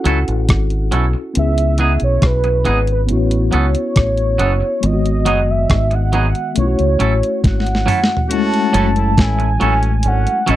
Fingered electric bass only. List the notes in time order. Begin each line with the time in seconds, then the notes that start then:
0.06 C#2
0.28 A1
0.49 G#1
0.93 B1
1.37 C#2
2.02 B1
2.23 B1
2.67 G#1
3.10 A1
3.54 C#2
3.96 A1
4.41 F#1
4.83 G#1
5.26 F#1
5.70 G#1
6.57 B1
6.80 C#2
7.00 A1
7.44 G#1
8.74 F#1
9.18 A1
9.61 A1
10.05 G#1
10.49 A1